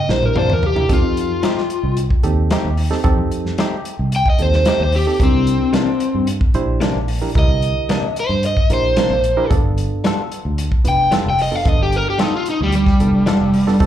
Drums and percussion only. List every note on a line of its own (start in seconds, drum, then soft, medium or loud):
0.09 snare medium
0.23 mid tom medium
0.36 mid tom medium
0.50 mid tom medium
0.63 floor tom medium
0.76 floor tom medium
0.89 kick loud
0.89 closed hi-hat medium
1.17 closed hi-hat medium
1.43 snare loud
1.43 closed hi-hat medium
1.58 snare soft
1.70 closed hi-hat medium
1.97 closed hi-hat medium
2.10 kick medium
2.23 closed hi-hat medium
2.51 snare loud
2.51 closed hi-hat medium
2.77 open hi-hat medium
2.92 snare soft
3.04 kick loud
3.04 closed hi-hat medium
3.32 closed hi-hat medium
3.46 snare soft
3.58 snare loud
3.58 closed hi-hat medium
3.85 closed hi-hat medium
4.12 closed hi-hat medium
4.26 kick medium
4.39 closed hi-hat medium
4.53 snare soft
4.65 snare loud
4.65 closed hi-hat medium
4.92 open hi-hat medium
5.20 kick loud
5.20 closed hi-hat medium
5.47 closed hi-hat medium
5.74 snare loud
5.74 closed hi-hat medium
6.00 closed hi-hat medium
6.27 closed hi-hat medium
6.41 kick medium
6.54 closed hi-hat medium
6.81 snare loud
6.81 closed hi-hat medium
7.08 open hi-hat medium
7.35 kick loud
7.35 closed hi-hat medium
7.62 closed hi-hat medium
7.89 snare loud
7.89 closed hi-hat medium
8.16 closed hi-hat medium
8.43 closed hi-hat medium
8.57 kick medium
8.70 closed hi-hat medium
8.96 snare loud
8.96 closed hi-hat medium
9.24 closed hi-hat medium
9.51 kick loud
9.51 closed hi-hat medium
9.78 closed hi-hat medium
10.04 snare loud
10.04 closed hi-hat medium
10.32 closed hi-hat medium
10.58 closed hi-hat medium
10.72 kick medium
10.85 closed hi-hat medium
11.12 snare loud
11.12 closed hi-hat medium
11.39 open hi-hat medium
11.65 kick loud
11.65 closed hi-hat medium
11.92 closed hi-hat medium
12.19 snare loud
12.19 closed hi-hat medium
12.46 closed hi-hat medium
12.72 closed hi-hat medium
12.86 kick medium
12.86 snare soft
13.00 closed hi-hat medium
13.27 snare loud
13.27 closed hi-hat medium
13.54 open hi-hat medium
13.68 snare soft
13.80 kick loud
13.80 closed hi-hat medium